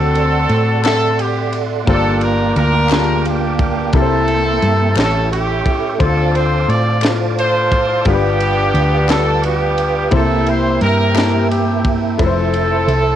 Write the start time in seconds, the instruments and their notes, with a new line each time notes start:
Already playing: fingered electric bass D2, grand piano D3 C4 F#4 A4 D5, horn section C4 F#4 A4, tonewheel organ A4 D5 F#5 C6
0.15 ride
0.49 fingered electric bass A2, ride
0.84 grand piano C4 A4 E5 F#5, horn section A4, snare, clap, ride
1.19 horn section G4, ride
1.53 ride
1.85 fingered electric bass G1, grand piano G2 A#3 F4 G4 C5, tonewheel organ A#3 F5 G5 D6, horn section A4, kick, ride
1.89 horn section D4 F4
1.95 grand piano D5
2.21 horn section A#4, ride
2.56 fingered electric bass D2, horn section D4 F4 A#4, ride
2.89 grand piano A#3 F4 G4 G#4, snare, clap, ride
2.99 grand piano A5
3.25 horn section A#3 D4 G4, ride
3.59 kick, ride
3.93 fingered electric bass C2, grand piano C3 A#3 E4 G4 A#4, horn section E4 A4, tonewheel organ E5 G5 C6, kick, ride
4.02 grand piano C5
4.28 ride
4.62 fingered electric bass G2, ride
4.95 fingered electric bass A1, grand piano A2 A3 E4 G4 C#5, horn section C#4 E4 A4, tonewheel organ A4 E5 C#6, snare, clap, ride
5.32 horn section C#4 E4 G4, ride
5.66 kick, ride
5.98 fingered electric bass D2, grand piano D3 A3 D4 E4 C5, horn section C4 F4 A4, tonewheel organ C5 F5 A5 D6, kick, ride
6.06 grand piano F4
6.35 horn section C5, ride
6.68 fingered electric bass A2, horn section D5, ride
7.01 grand piano A3 D4 E4 D5, snare, clap, ride
7.09 grand piano F4
7.39 horn section F4 A4 C5, ride
7.72 kick, ride
8.05 fingered electric bass G1, grand piano G2 G3 D4 F4 A#4, horn section B3 D4 G4, tonewheel organ B4 G5, kick, ride
8.13 grand piano B4
8.41 ride
8.74 fingered electric bass D2, ride
9.08 grand piano G3 D4 F4 B4, horn section A4, snare, clap, ride
9.43 horn section B3 D4 G4, ride
9.78 ride
10.10 fingered electric bass C2, grand piano C3 A#3 E4 G4 C5, tonewheel organ A#3 E5, kick, ride
10.14 horn section E4 A4
10.46 horn section C5, ride
10.81 fingered electric bass G2, horn section E4 G4 A#4, ride
11.14 grand piano A#3 E4 G4 A5, clap, ride
11.18 snare
11.51 horn section G4, ride
11.85 kick, ride
12.17 fingered electric bass F1, grand piano F3 A3 E4 B4, horn section C4 E4 A4, tonewheel organ A4 C5, kick, ride
12.26 grand piano C5
12.54 ride
12.87 fingered electric bass C2, ride